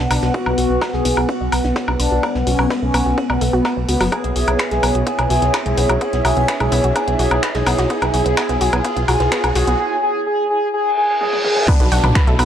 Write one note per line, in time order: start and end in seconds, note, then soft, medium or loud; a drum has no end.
0.00 4.12 B3 medium
0.00 9.75 B3 medium
0.00 5.50 B4 medium
0.00 9.75 B4 medium
0.00 4.08 F#5 medium
0.00 5.29 F#5 medium
0.00 snare loud
0.00 riser medium
0.11 0.18 B1 loud
0.11 0.28 D4 medium
0.11 0.17 B4 medium
0.11 snare medium
0.11 open hi-hat loud
0.11 ride medium
0.11 low woodblock soft
0.22 0.30 B1 medium
0.22 0.32 F#4 medium
0.22 snare medium
0.22 ride medium
0.34 0.41 B3 loud
0.34 0.51 F#4 loud
0.34 kick loud
0.34 ride medium
0.46 0.54 B1 medium
0.46 0.50 B3 medium
0.46 mid tom medium
0.46 low woodblock soft
0.58 0.66 B1 medium
0.58 0.83 F#4 medium
0.58 0.67 F#4 medium
0.58 open hi-hat loud
0.58 ride medium
0.70 0.77 B1 medium
0.70 0.74 B3 medium
0.81 0.85 B4 medium
0.81 kick loud
0.81 snare loud
0.81 ride medium
0.81 low woodblock soft
0.93 1.01 B1 medium
0.93 1.03 A3 medium
0.93 1.19 G#4 loud
0.93 snare soft
1.05 1.13 B1 medium
1.05 1.15 B3 loud
1.05 open hi-hat loud
1.05 ride medium
1.17 1.25 B1 medium
1.17 1.26 F#4 medium
1.17 mid tom medium
1.17 low woodblock soft
1.29 1.35 C#4 loud
1.29 1.46 F#4 medium
1.29 kick loud
1.29 ride medium
1.41 1.48 B1 medium
1.41 1.44 D5 medium
1.52 1.60 B1 loud
1.52 1.62 F#4 medium
1.52 open hi-hat loud
1.52 ride medium
1.52 low woodblock soft
1.64 1.72 B1 medium
1.64 1.68 D4 medium
1.64 snare soft
1.76 1.80 B4 loud
1.76 kick loud
1.76 snare loud
1.76 ride medium
1.88 1.96 B1 medium
1.88 1.94 D4 medium
1.88 mid tom medium
1.88 low woodblock medium
2.00 2.07 B1 loud
2.00 2.34 D4 loud
2.00 2.06 B4 medium
2.00 open hi-hat loud
2.00 ride medium
2.12 2.19 B1 medium
2.12 2.21 F#4 medium
2.23 2.30 B3 loud
2.23 kick loud
2.23 ride medium
2.23 low woodblock medium
2.35 2.43 B1 medium
2.35 2.39 B3 medium
2.35 snare soft
2.47 2.55 B1 medium
2.47 2.73 C#4 loud
2.47 2.56 F#4 medium
2.47 open hi-hat loud
2.47 open hi-hat medium
2.59 2.66 B1 medium
2.59 2.63 B3 medium
2.59 mid tom medium
2.59 low woodblock medium
2.70 2.74 B4 loud
2.70 kick loud
2.70 snare loud
2.70 ride medium
2.82 2.90 B1 medium
2.82 2.92 A3 medium
2.82 3.16 C#4 loud
2.94 3.02 B1 loud
2.94 3.04 B3 medium
2.94 open hi-hat loud
2.94 ride medium
2.94 low woodblock medium
3.06 3.14 B1 medium
3.06 3.15 F#4 medium
3.17 3.24 C#4 loud
3.17 kick loud
3.17 ride medium
3.30 3.37 B1 medium
3.30 3.33 D5 medium
3.30 mid tom medium
3.30 low woodblock medium
3.41 3.49 B1 loud
3.41 3.45 A3 loud
3.41 open hi-hat loud
3.41 ride medium
3.53 3.61 B1 medium
3.53 3.79 B3 medium
3.53 3.59 F#4 medium
3.65 3.75 F#4 loud
3.65 kick loud
3.65 snare loud
3.65 ride medium
3.65 low woodblock medium
3.77 3.85 B1 medium
3.77 3.81 B3 medium
3.89 3.96 C#2 loud
3.89 4.06 B3 medium
3.89 3.98 F#4 medium
3.89 open hi-hat loud
3.89 ride medium
4.01 4.08 F#1 medium
4.01 4.10 F#3 loud
4.01 snare soft
4.01 mid tom medium
4.01 open hi-hat medium
4.01 low woodblock soft
4.12 4.19 B3 medium
4.12 9.79 E4 medium
4.12 4.29 G#4 medium
4.12 9.75 C#5 medium
4.12 9.75 E5 medium
4.12 kick loud
4.12 closed hi-hat medium
4.12 ride medium
4.12 low woodblock medium
4.24 4.32 B1 medium
4.24 4.28 B3 medium
4.24 9.79 C#5 medium
4.24 closed hi-hat soft
4.36 4.44 B1 medium
4.36 4.45 F#4 medium
4.36 4.61 G#4 medium
4.36 open hi-hat loud
4.36 ride medium
4.48 4.55 B1 medium
4.48 4.51 B3 medium
4.48 closed hi-hat soft
4.48 mid tom medium
4.48 low woodblock medium
4.59 4.63 B4 medium
4.59 finger snap loud
4.59 kick loud
4.59 snare loud
4.59 closed hi-hat medium
4.59 ride medium
4.71 4.79 B1 medium
4.71 4.81 G#3 medium
4.71 4.97 G#4 medium
4.71 snare soft
4.71 closed hi-hat soft
4.83 4.91 B1 loud
4.83 4.93 B3 medium
4.83 open hi-hat loud
4.83 ride medium
4.83 low woodblock medium
4.95 5.03 B1 medium
4.95 5.04 F#4 medium
4.95 closed hi-hat soft
5.07 5.13 B3 medium
5.07 5.24 G#4 medium
5.07 kick loud
5.07 closed hi-hat medium
5.07 ride medium
5.19 5.26 B1 medium
5.19 5.22 B3 medium
5.19 closed hi-hat soft
5.19 mid tom medium
5.19 low woodblock medium
5.30 5.38 B1 loud
5.30 5.40 F#4 medium
5.30 5.56 G#4 medium
5.30 open hi-hat loud
5.30 ride medium
5.42 5.50 B1 medium
5.42 5.46 B3 medium
5.42 snare soft
5.42 closed hi-hat soft
5.51 5.58 B4 loud
5.51 9.79 G#5 medium
5.51 finger snap loud
5.51 kick loud
5.51 snare loud
5.51 closed hi-hat medium
5.51 ride medium
5.51 low woodblock medium
5.66 5.73 B1 medium
5.66 5.75 G#3 medium
5.66 5.92 G#4 medium
5.66 closed hi-hat soft
5.77 5.85 B1 loud
5.77 5.87 B3 medium
5.77 open hi-hat loud
5.77 ride medium
5.89 5.97 B1 medium
5.89 5.99 F#4 medium
5.89 closed hi-hat soft
5.89 mid tom medium
5.89 low woodblock medium
6.01 6.08 B3 loud
6.01 6.18 G#4 medium
6.01 kick loud
6.01 closed hi-hat medium
6.01 ride medium
6.13 6.21 B1 medium
6.13 6.17 B3 medium
6.13 snare soft
6.13 closed hi-hat soft
6.25 6.33 B1 medium
6.25 6.34 F#4 medium
6.25 6.51 G#4 medium
6.25 open hi-hat medium
6.25 open hi-hat loud
6.25 low woodblock medium
6.37 6.44 B1 loud
6.37 6.41 B3 medium
6.37 closed hi-hat soft
6.48 6.52 B4 medium
6.48 finger snap loud
6.48 kick loud
6.48 snare loud
6.48 closed hi-hat medium
6.48 ride medium
6.60 6.68 B1 medium
6.60 6.70 G#3 medium
6.60 6.86 G#4 medium
6.60 closed hi-hat soft
6.60 mid tom medium
6.60 low woodblock medium
6.72 6.80 B1 loud
6.72 6.82 B3 loud
6.72 open hi-hat loud
6.72 ride medium
6.84 6.92 B1 medium
6.84 6.93 F#4 medium
6.84 closed hi-hat soft
6.96 7.02 B3 loud
6.96 7.13 G#4 loud
6.96 kick loud
6.96 closed hi-hat medium
6.96 ride medium
6.96 low woodblock medium
7.08 7.15 B1 medium
7.08 7.11 B3 medium
7.08 closed hi-hat soft
7.19 7.27 B1 loud
7.19 7.29 F#4 medium
7.19 7.45 G#4 loud
7.19 open hi-hat loud
7.19 ride medium
7.31 7.39 B1 medium
7.31 7.35 B3 medium
7.31 closed hi-hat soft
7.31 mid tom medium
7.31 low woodblock medium
7.43 7.47 B4 loud
7.43 finger snap loud
7.43 kick loud
7.43 snare loud
7.43 closed hi-hat medium
7.43 ride medium
7.54 7.62 B1 medium
7.54 7.64 G#3 medium
7.54 7.80 G#4 medium
7.54 snare loud
7.54 closed hi-hat soft
7.54 ride medium
7.66 7.74 B1 loud
7.66 7.76 B3 loud
7.66 snare loud
7.66 open hi-hat loud
7.66 ride medium
7.66 low woodblock medium
7.78 7.86 B1 medium
7.78 7.88 F#4 medium
7.78 snare loud
7.78 closed hi-hat soft
7.78 ride medium
7.90 7.97 B3 medium
7.90 8.07 G#4 loud
7.90 kick loud
7.90 closed hi-hat medium
7.90 ride medium
8.02 8.10 B1 medium
8.02 8.06 B3 medium
8.02 closed hi-hat soft
8.02 mid tom loud
8.02 low woodblock medium
8.14 8.22 B1 medium
8.14 8.23 F#4 medium
8.14 8.35 G#4 loud
8.14 open hi-hat loud
8.14 ride medium
8.26 8.33 B1 loud
8.26 8.29 B3 medium
8.26 closed hi-hat soft
8.37 8.44 B3 loud
8.37 8.54 G#4 loud
8.37 finger snap loud
8.37 kick loud
8.37 snare loud
8.37 closed hi-hat medium
8.37 ride medium
8.37 low woodblock medium
8.49 8.57 B1 medium
8.49 8.53 B3 medium
8.49 snare soft
8.49 closed hi-hat soft
8.61 8.69 B1 loud
8.61 8.71 F#4 medium
8.61 8.83 G#4 loud
8.61 open hi-hat loud
8.61 ride medium
8.73 8.81 B1 medium
8.73 8.77 B3 medium
8.73 closed hi-hat soft
8.73 mid tom loud
8.73 low woodblock medium
8.85 8.91 B3 loud
8.85 9.02 G#4 loud
8.85 kick loud
8.85 closed hi-hat medium
8.85 ride medium
8.96 9.04 B1 medium
8.96 9.00 B3 medium
8.96 closed hi-hat soft
9.08 9.16 B1 loud
9.08 9.18 F#4 medium
9.08 9.30 G#4 loud
9.08 open hi-hat loud
9.08 ride medium
9.08 low woodblock medium
9.20 9.28 B1 medium
9.20 9.24 B3 medium
9.20 snare soft
9.20 closed hi-hat soft
9.32 9.38 B3 loud
9.32 9.49 G#4 loud
9.32 finger snap loud
9.32 kick loud
9.32 snare loud
9.32 closed hi-hat medium
9.32 ride medium
9.44 9.51 B1 medium
9.44 9.48 B3 medium
9.44 closed hi-hat soft
9.44 mid tom loud
9.44 low woodblock medium
9.55 9.63 B1 loud
9.55 9.65 F#4 medium
9.55 9.77 G#4 loud
9.55 snare loud
9.55 open hi-hat medium
9.55 ride medium
9.67 9.75 B1 medium
9.67 9.71 B3 medium
9.67 closed hi-hat soft
9.79 9.96 G#4 loud
10.03 10.20 G#4 loud
10.26 10.44 G#4 loud
10.50 10.67 G#4 loud
10.74 10.91 G#4 loud
10.74 reverse cymbal medium
10.97 11.14 G#4 loud
11.21 11.38 G#4 loud
11.21 high tom medium
11.33 high tom medium
11.44 11.62 G#4 loud
11.44 mid tom medium
11.56 mid tom medium
11.68 12.45 B2 medium
11.68 11.74 B3 loud
11.68 12.45 B3 medium
11.68 11.85 D4 loud
11.68 11.74 B4 medium
11.68 12.45 B4 medium
11.68 12.45 F#5 medium
11.68 kick loud
11.68 closed hi-hat medium
11.68 crash loud
11.68 ride medium
11.68 downlifter medium
11.68 low woodblock soft
11.80 11.88 B1 medium
11.80 11.84 B3 medium
11.80 11.84 B4 medium
11.80 closed hi-hat soft
11.91 12.00 B1 medium
11.91 12.17 D4 loud
11.91 12.01 F#4 medium
11.91 12.01 F#5 medium
11.91 open hi-hat loud
11.91 ride medium
12.04 12.11 B1 loud
12.04 12.07 B3 medium
12.04 12.07 B4 medium
12.04 closed hi-hat soft
12.04 mid tom medium
12.04 low woodblock soft
12.15 12.19 B4 loud
12.15 12.19 B5 medium
12.15 finger snap loud
12.15 kick loud
12.15 snare loud
12.15 closed hi-hat medium
12.15 ride medium
12.27 12.35 B1 medium
12.27 12.37 A3 medium
12.27 12.45 E4 loud
12.27 12.37 A4 medium
12.27 snare soft
12.27 closed hi-hat soft
12.39 12.45 B1 loud
12.39 12.45 B3 loud
12.39 12.45 B4 medium
12.39 open hi-hat loud
12.39 ride medium
12.39 low woodblock soft